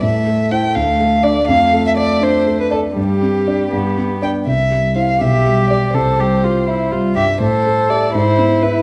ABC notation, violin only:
X:1
M:6/8
L:1/16
Q:3/8=82
K:C
V:1 name="Violin"
e4 g2 f4 d2 | f3 e d2 c3 B A2 | G8- G2 g2 | e4 f2 e4 d2 |
c8 z2 e2 | c4 d2 c4 B2 |]